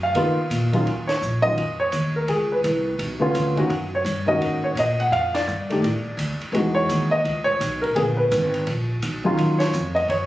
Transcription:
Already playing: F#2
0.03 F5
0.14 C#3 D#3 A#3 B3 F4, ride
0.50 A#2, hi-hat pedal, ride
0.73 D#3 F#3 C#4 F4, ride
0.86 D#2, ride
1.07 C#5, snare, ride
1.22 A#1, hi-hat pedal
1.42 D#3 F#3 C#4 F4 D#5
1.57 F2, ride
1.80 C#5
1.92 D#2, hi-hat pedal, ride
2.16 A#4
2.28 C#2 G#4, ride
2.52 B4
2.64 C2, hi-hat pedal, ride
2.99 B1, ride
3.20 D3 B3 C#4 F4
3.34 D2, hi-hat pedal, ride
3.56 D#3 A#3 C#4 F#4, ride
3.69 F#2, ride
3.95 C#5
4.05 G2, hi-hat pedal, ride
4.26 D#3 A#3 C#4 F#4 D#5
4.41 G#2, ride
4.64 C#5
4.75 A#2 D#5, hi-hat pedal, ride
5.00 F#5, ride
5.11 F2 F5, ride
5.34 D5, snare, ride
5.47 G2, hi-hat pedal
5.70 D#3 A3 D4 G4, ride
5.82 A2, ride
6.04 muted upright bass stroke
6.17 D2, hi-hat pedal, ride
6.40 muted upright bass stroke, ride
6.52 E2 E3 G#3 D#4 F#4, ride
6.75 C#5
6.89 D#2, hi-hat pedal, ride
7.11 D#5
7.25 C#2, ride
7.44 C#5, kick
7.60 B1, hi-hat pedal, ride
7.82 A#4, kick, ride
7.95 A#1 D3 A#3 B3 G#4, ride
8.17 B4
8.32 G#1, hi-hat pedal, ride
8.54 ride
8.67 A#1, ride
9.02 B1, hi-hat pedal, ride
9.24 D#3 F#3 C#4 F4
9.37 D#2, ride
9.59 C#5, snare, ride
9.73 F2, hi-hat pedal
9.95 D#5, ride
10.08 F#2 C#5, ride

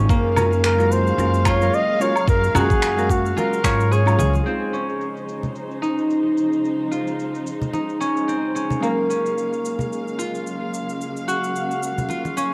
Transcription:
Already playing: C#3 C#4 D#4 F4
0.09 F#2 F#3 G#3 A#3 F5, kick, cabasa
0.36 G#3 C#4 F4 F#4 A#4, low conga, cabasa, low woodblock
0.53 cabasa
0.64 A#4, finger snap, cabasa
0.78 G#3 C#4 F4 F#4 A#4, cabasa
0.92 C5, cabasa
1.07 cabasa
1.17 F#2 G#3 C#4 F4 F#4 A#4, cabasa
1.34 cabasa
1.45 F4 C#5, finger snap, kick, cabasa, low woodblock
1.60 F#3 G#3 C#4 F4 A#4, cabasa
1.74 D#5, cabasa
2.00 G#3 C#4 F4 F#4 A#4 C#5, cabasa
2.16 cabasa, low woodblock
2.27 F#2 A#4, kick, cabasa
2.44 cabasa
2.54 F#2 G#3 C#4 F4 F#4 G#4 A#4, muted conga, low conga, cabasa, low woodblock
2.70 kick, high conga, cabasa
2.82 finger snap, cabasa
2.96 G#3 C#4 F#4 A#4 F5, cabasa
3.09 F#4, kick, cabasa
3.26 cabasa
3.36 G#3 C#4 F4 F#4 A#4, muted conga, cabasa
3.53 cabasa
3.63 G#2 F#3 G#3 C#4 F4 C#5, finger snap, kick, cabasa
3.80 cabasa
3.91 G#4 C#5, cabasa
4.05 F#3 G#3 C#4 F4 C#5, cabasa, low woodblock
4.18 C#2 G#4, high conga, cabasa
4.34 muted conga, high conga, cabasa
4.44 C#3 F3 G#3 C4 D#4 F4 C5, cabasa
4.48 C5
4.73 C#4, cabasa
4.89 cabasa
5.01 cabasa
5.17 cabasa
5.29 cabasa
5.43 low conga, cabasa
5.56 cabasa
5.71 cabasa
5.82 D#4, cabasa
5.98 cabasa
6.10 cabasa
6.38 cabasa
6.53 cabasa
6.65 cabasa
6.91 F4, cabasa
7.07 cabasa
7.19 cabasa
7.35 cabasa
7.47 cabasa
7.62 low conga, cabasa
7.73 D#4, muted conga, cabasa
7.89 cabasa
8.00 C#4, cabasa
8.17 cabasa
8.28 C4, cabasa
8.55 C#4, cabasa
8.70 muted conga, low conga, cabasa
8.80 C#3 F#3 G#3 A#3 C#4 F5, cabasa
8.85 A#4
9.10 C#4, cabasa
9.26 cabasa
9.38 cabasa
9.53 cabasa
9.65 cabasa
9.79 low conga, cabasa
9.93 cabasa
10.08 cabasa
10.19 F4, cabasa
10.35 cabasa
10.47 cabasa
10.74 cabasa
10.89 cabasa
11.01 cabasa
11.17 cabasa
11.28 F#4, cabasa
11.44 cabasa
11.56 cabasa
11.71 cabasa
11.83 cabasa
11.98 low conga, cabasa
12.09 F4, muted conga, cabasa
12.25 muted conga, cabasa
12.37 C#4, cabasa

